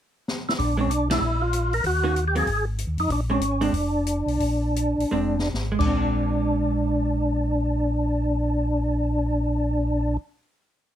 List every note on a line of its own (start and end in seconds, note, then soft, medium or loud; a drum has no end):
0.28 snare medium
0.49 0.54 E4 medium
0.49 snare medium
0.59 0.88 A#1 medium
0.59 0.77 D4 medium
0.59 kick soft
0.59 open hi-hat soft
0.77 0.88 G#3 soft
0.77 0.89 C4 soft
0.77 0.91 C#4 medium
0.77 0.89 D4 medium
0.88 1.18 B1 medium
0.88 1.08 D4 medium
0.88 closed hi-hat soft
1.10 1.20 F3 medium
1.10 1.20 G#3 medium
1.10 1.21 D4 medium
1.10 1.43 E4 medium
1.10 snare medium
1.10 ride medium
1.21 1.80 A#1 medium
1.42 1.74 F4 medium
1.53 closed hi-hat soft
1.73 1.85 A#4 medium
1.73 open hi-hat soft
1.84 2.43 D#2 medium
1.84 2.25 F#4 medium
1.84 kick soft
1.84 open hi-hat soft
2.04 2.14 D#3 medium
2.04 2.14 A#3 medium
2.04 2.14 C#4 medium
2.04 2.14 F#4 medium
2.16 closed hi-hat soft
2.28 2.36 G4 medium
2.35 2.45 F#3 medium
2.35 2.46 A#3 medium
2.35 2.46 C4 medium
2.35 2.65 G#4 medium
2.35 open hi-hat soft
2.47 2.85 G#1 medium
2.47 kick soft
2.47 open hi-hat soft
2.79 closed hi-hat soft
2.87 2.97 D#2 medium
2.98 3.08 F2 medium
2.98 3.11 D#4 medium
2.98 open hi-hat soft
3.09 3.38 A#1 medium
3.09 3.20 D4 loud
3.09 kick soft
3.09 open hi-hat soft
3.30 3.40 G#3 medium
3.30 3.40 C4 medium
3.30 3.63 C#4 medium
3.30 3.41 D4 medium
3.39 3.70 G#1 medium
3.39 closed hi-hat soft
3.61 3.72 G#3 medium
3.61 3.72 C4 medium
3.61 5.49 D4 medium
3.61 3.72 D4 medium
3.61 open hi-hat soft
3.73 4.23 F1 medium
3.73 kick soft
3.73 open hi-hat soft
4.07 closed hi-hat medium
4.26 4.38 B1 medium
4.26 open hi-hat soft
4.40 4.95 A#1 medium
4.40 kick soft
4.40 open hi-hat soft
4.76 closed hi-hat soft
4.98 5.05 A#1 soft
4.98 open hi-hat soft
5.11 5.50 F1 medium
5.11 5.35 G#3 medium
5.11 5.35 C4 medium
5.11 5.35 D4 medium
5.39 snare medium
5.53 5.78 G#1 medium
5.53 snare medium
5.72 10.14 G#3 medium
5.79 10.17 A#1 medium
5.79 10.17 D4 medium
5.79 kick medium
5.79 crash medium
5.86 10.28 C4 medium
5.97 10.39 D4 medium